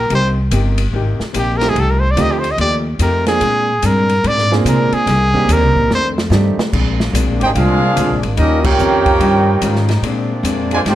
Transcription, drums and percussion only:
0.10 ride medium
0.51 hi-hat pedal medium
0.51 ride medium
0.78 ride medium
1.20 snare soft
1.34 hi-hat pedal medium
1.34 ride medium
1.61 snare soft
1.61 ride medium
1.76 ride medium
2.17 hi-hat pedal soft
2.17 ride medium
2.44 ride medium
2.58 ride medium
2.99 hi-hat pedal medium
2.99 ride medium
3.27 snare medium
3.27 ride medium
3.41 ride medium
3.82 hi-hat pedal medium
3.82 ride medium
4.09 ride medium
4.24 ride medium
4.39 snare soft
4.52 snare medium
4.66 hi-hat pedal medium
4.66 ride medium
4.92 ride medium
5.07 snare soft
5.07 ride medium
5.34 kick medium
5.49 hi-hat pedal medium
5.49 ride medium
5.76 kick medium
5.91 snare medium
6.18 snare medium
6.32 snare medium
6.32 hi-hat pedal medium
6.59 snare loud
6.73 kick medium
6.73 crash medium
7.00 snare medium
7.15 hi-hat pedal medium
7.15 ride medium
7.41 ride medium
7.55 ride medium
7.97 hi-hat pedal medium
7.97 ride medium
8.23 ride medium
8.37 ride medium
8.64 kick loud
8.64 crash medium
8.79 hi-hat pedal medium
9.06 kick medium
9.06 ride medium
9.20 ride medium
9.62 hi-hat pedal medium
9.62 ride medium
9.76 snare soft
9.89 snare medium
9.89 ride medium
10.03 ride medium
10.45 hi-hat pedal medium
10.45 ride medium
10.71 ride medium
10.86 snare soft
10.86 ride medium

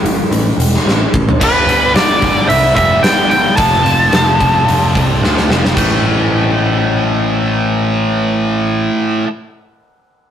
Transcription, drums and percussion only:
0.06 open hi-hat medium
0.32 open hi-hat medium
0.60 open hi-hat medium
0.74 snare soft
0.88 snare medium
1.14 kick medium
1.29 floor tom medium
1.41 kick loud
1.41 crash medium
1.69 open hi-hat medium
1.96 snare loud
1.96 open hi-hat medium
2.22 kick medium
2.22 open hi-hat medium
2.50 open hi-hat medium
2.77 kick medium
2.77 open hi-hat medium
3.04 snare loud
3.04 open hi-hat medium
3.31 open hi-hat soft
3.57 kick loud
3.57 open hi-hat medium
3.86 open hi-hat soft
4.13 snare medium
4.13 open hi-hat medium
4.40 kick medium
4.40 open hi-hat soft
4.68 open hi-hat medium
4.95 kick medium
4.95 open hi-hat soft
5.24 snare medium
5.37 snare medium
5.50 snare medium
5.65 snare medium
5.77 kick medium
5.77 crash medium

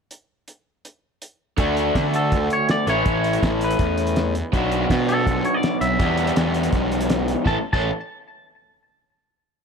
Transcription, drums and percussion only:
0.11 closed hi-hat medium
0.48 closed hi-hat medium
0.85 closed hi-hat medium
1.22 closed hi-hat medium
1.58 kick loud
1.58 closed hi-hat medium
1.77 closed hi-hat medium
1.95 kick medium
1.95 snare loud
1.95 closed hi-hat medium
2.14 closed hi-hat medium
2.32 kick medium
2.32 closed hi-hat medium
2.50 closed hi-hat medium
2.69 snare loud
2.69 closed hi-hat medium
2.87 snare soft
2.87 closed hi-hat medium
3.06 kick loud
3.06 closed hi-hat medium
3.24 closed hi-hat medium
3.33 closed hi-hat medium
3.43 kick medium
3.43 snare loud
3.43 closed hi-hat medium
3.61 closed hi-hat medium
3.71 closed hi-hat medium
3.79 kick loud
3.79 closed hi-hat medium
3.98 closed hi-hat medium
4.07 closed hi-hat medium
4.16 snare loud
4.16 closed hi-hat medium
4.35 closed hi-hat medium
4.53 kick loud
4.53 closed hi-hat medium
4.72 closed hi-hat medium
4.90 kick medium
4.90 snare loud
4.90 closed hi-hat medium
5.09 closed hi-hat medium
5.27 kick loud
5.27 closed hi-hat medium
5.45 closed hi-hat medium
5.63 snare loud
5.63 closed hi-hat medium
5.81 closed hi-hat medium
6.00 kick loud
6.00 closed hi-hat medium
6.17 closed hi-hat medium
6.27 closed hi-hat medium
6.36 snare loud
6.36 closed hi-hat medium
6.54 closed hi-hat medium
6.63 closed hi-hat medium
6.72 kick loud
6.72 closed hi-hat medium
6.92 closed hi-hat medium
7.01 closed hi-hat medium
7.10 snare loud
7.10 closed hi-hat medium
7.28 snare soft
7.28 closed hi-hat medium
7.46 kick loud
7.46 snare medium
7.73 kick loud
7.73 crash medium

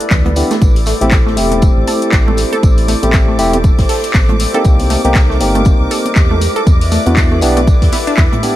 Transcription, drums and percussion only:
0.01 closed hi-hat medium
0.11 kick loud
0.11 snare loud
0.11 clap loud
0.11 closed hi-hat medium
0.11 tambourine medium
0.11 muted conga medium
0.25 closed hi-hat soft
0.25 high conga medium
0.25 low conga loud
0.36 open hi-hat loud
0.36 tambourine medium
0.51 snare loud
0.51 closed hi-hat medium
0.51 tambourine medium
0.51 muted conga medium
0.62 kick loud
0.62 closed hi-hat medium
0.62 tambourine medium
0.62 muted conga medium
0.76 closed hi-hat soft
0.76 open hi-hat medium
0.86 snare medium
0.86 open hi-hat loud
0.86 tambourine medium
1.01 closed hi-hat medium
1.01 muted conga medium
1.01 high conga medium
1.11 kick loud
1.11 snare loud
1.11 clap loud
1.11 closed hi-hat medium
1.11 tambourine medium
1.27 snare soft
1.27 muted conga medium
1.37 open hi-hat loud
1.37 tambourine medium
1.52 closed hi-hat medium
1.52 high conga medium
1.62 kick loud
1.62 closed hi-hat medium
1.62 tambourine medium
1.62 muted conga medium
1.87 open hi-hat loud
1.87 tambourine medium
1.87 muted conga medium
2.02 closed hi-hat medium
2.12 kick loud
2.12 snare loud
2.12 clap loud
2.12 closed hi-hat medium
2.12 tambourine medium
2.28 muted conga medium
2.28 low conga loud
2.37 open hi-hat loud
2.37 tambourine medium
2.53 closed hi-hat medium
2.53 muted conga medium
2.63 kick loud
2.63 closed hi-hat medium
2.63 tambourine loud
2.78 open hi-hat medium
2.88 open hi-hat loud
2.88 tambourine medium
2.88 muted conga medium
3.03 closed hi-hat medium
3.03 high conga loud
3.13 kick loud
3.13 snare loud
3.13 clap loud
3.13 closed hi-hat medium
3.13 tambourine medium
3.13 muted conga medium
3.39 open hi-hat loud
3.39 tambourine medium
3.53 closed hi-hat medium
3.53 muted conga medium
3.53 high conga medium
3.64 kick loud
3.64 closed hi-hat medium
3.64 tambourine medium
3.79 kick medium
3.79 snare medium
3.79 open hi-hat medium
3.79 muted conga medium
3.89 open hi-hat loud
3.89 open hi-hat medium
4.04 closed hi-hat medium
4.14 kick loud
4.14 snare loud
4.14 clap loud
4.14 closed hi-hat medium
4.14 tambourine loud
4.14 muted conga medium
4.29 closed hi-hat soft
4.29 high conga medium
4.29 low conga loud
4.40 open hi-hat loud
4.40 tambourine medium
4.40 muted conga medium
4.54 closed hi-hat medium
4.64 kick loud
4.64 closed hi-hat medium
4.64 tambourine medium
4.79 closed hi-hat soft
4.79 open hi-hat medium
4.79 muted conga medium
4.89 snare medium
4.89 open hi-hat loud
4.89 tambourine medium
5.05 closed hi-hat medium
5.05 muted conga soft
5.05 high conga loud
5.15 kick loud
5.15 snare loud
5.15 clap loud
5.15 closed hi-hat medium
5.15 tambourine loud
5.31 snare soft
5.40 open hi-hat loud
5.40 tambourine medium
5.40 muted conga medium
5.55 closed hi-hat medium
5.55 high conga medium
5.65 kick loud
5.65 closed hi-hat medium
5.65 tambourine medium
5.65 muted conga medium
5.91 open hi-hat loud
5.91 tambourine medium
6.05 closed hi-hat medium
6.05 muted conga medium
6.16 kick loud
6.16 snare loud
6.16 clap loud
6.16 closed hi-hat medium
6.16 tambourine medium
6.30 muted conga medium
6.30 low conga medium
6.41 open hi-hat loud
6.41 tambourine medium
6.56 closed hi-hat medium
6.67 kick loud
6.67 closed hi-hat medium
6.67 tambourine loud
6.67 muted conga medium
6.81 open hi-hat medium
6.91 open hi-hat loud
6.91 tambourine medium
6.91 muted conga soft
7.06 closed hi-hat medium
7.06 high conga loud
7.17 kick loud
7.17 snare loud
7.17 clap loud
7.17 closed hi-hat medium
7.17 tambourine loud
7.32 muted conga medium
7.41 open hi-hat loud
7.41 tambourine medium
7.56 closed hi-hat medium
7.56 muted conga soft
7.56 high conga medium
7.67 kick loud
7.67 closed hi-hat soft
7.67 tambourine medium
7.82 kick medium
7.82 snare medium
7.82 open hi-hat medium
7.92 open hi-hat medium
7.92 open hi-hat loud
7.92 muted conga medium
8.07 closed hi-hat medium
8.17 kick loud
8.17 snare loud
8.17 clap loud
8.17 closed hi-hat medium
8.17 tambourine loud
8.17 muted conga medium
8.33 closed hi-hat soft
8.33 high conga medium
8.33 low conga medium
8.43 open hi-hat loud
8.43 tambourine medium

